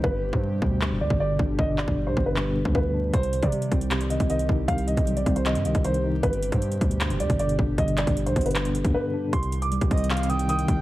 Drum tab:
HH |------------------------------------------------------------------------------------------------|------------------------------------------------------------------------------------------------|x-----x-----x-----x-----x-----x-----x-----x-----x-----x-----x-----x-----x-----x-----------------|x-----x-----x-----x-----x-----x-----x-----x-----x-----x-----x-----x-----x-----x-----------------|
CP |------------------------------------------------x-----------------------------------------------|------------x-----------------------------------x-----------------------------------------------|------------------------------------------------x-----------------------------------------------|------------------------------------------------x-----------------------------------------------|
BD |o-----------------o-----------------o-----------------------------o-----------------o-----------|o-----------------o-----------------o-----------------------------o-----o-----------------------|o-----------------o-----------------o-----------------------------o-----------------o-----------|o-----------------o-----------------o-----------------------------o-----------------------------|

HH |x-----x-----x-----x-----x-----x-----x-----x-----x-----x-----x-----x-----x-----x-----------------|x-----x-----x-----x-----x-----x-----x--x--x--x--x-----x-----x-----x-----------------------------|x-----x-----x-----x-----x-----x-----x---x---x---x---x---x---x-----x-----x-----x-----x-----------|
CP |------------------------------------------------x-----------------------------------------------|------------x-----------------------------------x-----------------------------------------------|------------------------------------------------x-----------------------------------------------|
BD |o-----------------o-----------------o-----------------------------o-----------------o-----------|o-----------------o-----------------o-----------------------------o-----------------------------|o-----------------------------o-----o-----------------------------------------------o-----------|